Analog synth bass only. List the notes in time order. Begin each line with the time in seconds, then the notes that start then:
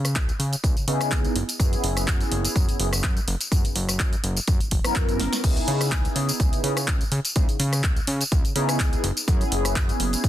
Already playing: C#3
0.16 C#2
0.39 C#3
0.64 C#2
0.77 C#3
0.88 C#3
1.12 C#2
1.35 F#1
1.60 F#2
1.83 F#1
2.08 F#2
2.32 F#1
2.56 F#2
2.68 F#1
2.80 F#1
3.04 F#2
3.27 F#1
3.52 F#2
3.65 F#1
3.75 F#1
4.00 F#2
4.23 F#1
4.48 F#2
4.61 F#1
4.72 F#1
4.85 F#2
4.96 F#2
5.20 F#1
5.44 C#2
5.68 C#3
5.92 C#2
6.16 C#3
6.40 C#2
6.53 C#3
6.64 C#3
6.88 C#2
7.12 C#3
7.36 C#2
7.49 C#3
7.60 C#3
7.84 C#2
8.08 C#3
8.32 C#2
8.44 C#3
8.56 C#3
8.80 C#2
9.04 F#1
9.28 F#2
9.51 F#1
9.76 F#2
10.00 F#1
10.24 F#2